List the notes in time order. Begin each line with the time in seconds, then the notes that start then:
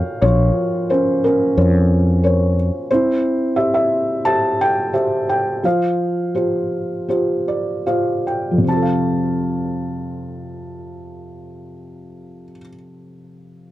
Already playing: A#3 A#4 C#5 F5 G5
0.22 A#1 F3 F4 C#5
0.90 C#4 A#4 C5
1.24 C#4 A#4
1.57 F2 A#4 C5 C#5
2.23 A#4 C5 C#5
2.91 C4 E4 C5
3.56 G4 C5 E5
3.74 E5
4.25 G4 C5 E5 A5
4.61 G5
4.93 G4 C5 E5
5.29 G5
5.63 F3 C5 F5
6.35 F4 G4 C5
7.08 F4 G4 C5
7.48 D5
7.86 F4 G4 C5 F5
8.27 G5
8.51 F2
8.58 C3
8.64 C4
8.68 F4 A5
8.76 A4
8.82 F5